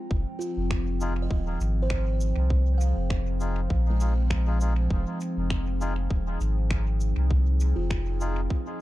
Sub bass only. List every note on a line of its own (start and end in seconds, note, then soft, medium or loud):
0.11 0.25 F1 loud
0.57 1.28 F1 loud
1.30 1.57 D#1 medium
1.60 2.34 G#1 loud
2.36 2.93 C2 medium
2.96 3.68 F1 loud
3.70 4.88 A#1 loud
4.90 5.05 F1 loud
5.37 6.08 F1 loud
6.10 6.37 D#1 medium
6.40 7.14 G#1 loud
7.17 7.74 C2 medium
7.76 8.48 F1 loud